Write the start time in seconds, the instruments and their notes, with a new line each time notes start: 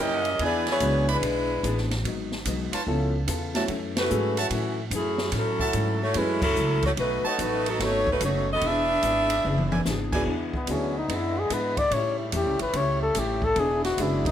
Already playing: upright bass F#2, trumpet section E4 A#4 C#5 G5
0.00 hollow-body jazz guitar A#2 G3 C#4 E4, saxophone section C#4 G4 A#4 D#5
0.25 ride
0.39 upright bass E2, hollow-body jazz guitar E3 B3 D4 G#4, trumpet section D4 E4 B4 G#5, kick, ride
0.45 saxophone section B3 E4 G#4 D5
0.66 snare, ride
0.71 saxophone section B3 E4 G#4 C#5
0.80 upright bass C#2, hollow-body jazz guitar E3 B3 D4 G#4, grand piano F#3 G#3 B3 D4 E4, kick, hi-hat pedal, ride
1.07 trumpet section E4 B4 D5 B5, ride
1.14 saxophone section G#3 D4 E4 B4
1.22 upright bass B1, hollow-body jazz guitar E3 B3 D4 G#4, kick, ride
1.63 upright bass A1, hollow-body jazz guitar E3 B3 D4 G#4, kick, hi-hat pedal, ride
1.78 snare
1.91 snare, ride
2.04 upright bass G#1, hollow-body jazz guitar G#2 F#3 B3 D#4, kick, ride
2.32 snare
2.45 upright bass B1, hollow-body jazz guitar G#2 F#3 B3 D#4, kick, hi-hat pedal, ride
2.73 trumpet section F4 B4 C#5 A5, muted upright bass stroke, ride
2.87 upright bass C#2, hollow-body jazz guitar C#3 B3 F4 A4, grand piano F3 B3 C#4 E4 A4, kick
3.27 upright bass E2, hollow-body jazz guitar C#3 B3 F4 A4, kick, hi-hat pedal, ride
3.55 grand piano F#3 A3 C#4 E4 F#4, trumpet section F#4 C#5 E5 A5, snare, ride
3.68 upright bass F#2, hollow-body jazz guitar F#2 E3 A3 C#4, kick, ride
3.97 saxophone section A3 E4 F#4 B4, snare, ride
4.10 hollow-body jazz guitar F#2 E3 A3 C#4, upright bass G#2, grand piano F#3 A3 C#4 E4 G#4, hi-hat pedal
4.37 saxophone section E3 A3 C#4 F#4, trumpet section F#4 C#5 E5 A5, ride
4.50 hollow-body jazz guitar F#2 E3 A3, upright bass A2, kick, ride
4.55 hollow-body jazz guitar C#4
4.91 upright bass F#2, hollow-body jazz guitar F#2 E3 A3, kick, hi-hat pedal, ride
4.95 saxophone section F#3 C#4 E4 G#4, hollow-body jazz guitar C#4
5.18 snare
5.31 hollow-body jazz guitar F#2 E3 A3 C#4, upright bass A2, kick, snare, ride
5.36 saxophone section F#3 C#4 E4 A4
5.59 trumpet section F#4 C#5 E5 A5, kick
5.73 hollow-body jazz guitar F#2 E3 A3 C#4, upright bass G#2, kick, hi-hat pedal, ride
6.03 saxophone section A3 E4 F#4 C#5
6.14 hollow-body jazz guitar F#2 E3 A3 C#4, upright bass F#2, grand piano F#3 A3 C#4 E4 G#4, saxophone section G#3 C#4 E4 B4, kick, ride
6.42 saxophone section F#3 C#4 E4 A4, kick, crash
6.56 upright bass C#2, hollow-body jazz guitar F#2 E3 A3 C#4, hi-hat pedal
6.83 saxophone section A3 E4 F#4 C#5, kick, ride
6.97 upright bass B1, hollow-body jazz guitar B2 F#3 A3 D#4, saxophone section A3 D#4 F#4 B4, ride
7.24 saxophone section A3 D#4 F#4 C#5, trumpet section F#4 B4 D#5 A5, muted upright bass stroke
7.38 upright bass A1, hollow-body jazz guitar B2 F#3 A3 D#4, saxophone section B4, kick, hi-hat pedal, ride
7.42 saxophone section A3 D#4 F#4
7.66 saxophone section F#3 B3 D#4 A4, ride
7.79 upright bass G#1, hollow-body jazz guitar B2 F#3 A3 D#4, grand piano F#3 B3 C#4 D#4 A4, saxophone section D#4 F#4, kick, snare, ride
7.84 saxophone section A3 C#5
8.07 kick
8.11 saxophone section A3 D#4 F#4 B4
8.21 upright bass F#1, hollow-body jazz guitar B2 F#3 A3 D#4, kick, hi-hat pedal, ride
8.25 saxophone section A3 D#4 F#4 C#5
8.53 saxophone section B3 F#4 A4 D#5
8.61 upright bass E1, hollow-body jazz guitar E3 B3 D4 G#4, saxophone section G#4, kick, ride
8.66 saxophone section D4 B4 E5
9.03 upright bass G#1, hollow-body jazz guitar E3 B3 D4 G#4, kick, hi-hat pedal, ride
9.30 ride
9.44 upright bass F#1, hollow-body jazz guitar E3 B3 D4 G#4, mid tom
9.58 high tom
9.71 trumpet section E4 B4 D5 G#5, high tom
9.85 upright bass G#1, hollow-body jazz guitar E3 B3 D4 G#4, snare, hi-hat pedal
10.12 grand piano F#3 B3 D4 E4 G#4, trumpet section E4 B4 D5 G#5, kick, crash
10.26 upright bass E2, saxophone section D3 G#3 B3 E4, hollow-body jazz guitar E3 B3 D4, kick
10.30 hollow-body jazz guitar G#4
10.54 muted trumpet B3, kick
10.67 upright bass D2, hollow-body jazz guitar E3 B3 D4 G#4, grand piano F#3 B3 D4 E4 G#4, kick, hi-hat pedal, ride
10.72 muted trumpet C#4
10.98 muted trumpet D#4
11.08 upright bass F#2, hollow-body jazz guitar E3 B3 D4 G#4, kick, ride
11.14 muted trumpet E4
11.39 muted trumpet G#4
11.50 upright bass G#2, hollow-body jazz guitar E3 B3 D4 G#4, muted trumpet B4, kick, hi-hat pedal, ride
11.77 muted trumpet D5, kick, ride
11.91 upright bass A2, hollow-body jazz guitar A2 G3 C#4 E4, saxophone section C#3 G3 A3, muted trumpet C#5, kick, ride
12.20 muted trumpet E4
12.32 upright bass E2, hollow-body jazz guitar A2 G3 C#4 E4, muted trumpet G4, kick, hi-hat pedal, ride
12.46 upright bass C#2
12.59 upright bass A1, muted trumpet B4, ride
12.73 upright bass C#2, hollow-body jazz guitar A2 G3 C#4 E4, muted trumpet C#5, kick, ride
13.02 muted trumpet A4
13.15 upright bass A1, hollow-body jazz guitar A2 G3 C#4 E4, kick, hi-hat pedal, ride
13.19 muted trumpet G4
13.42 muted trumpet A4, kick
13.56 upright bass E1, hollow-body jazz guitar E3 B3 D4 G#4, saxophone section G#3 B3 D4, muted trumpet G#4, kick, ride
13.84 muted trumpet F#4, snare, ride
13.98 upright bass F#1, hollow-body jazz guitar E3 B3 D4 G#4, grand piano G#3 B3 D4 E4 F#4, kick, hi-hat pedal, ride
14.02 muted trumpet E4
14.25 muted trumpet D#4, kick, ride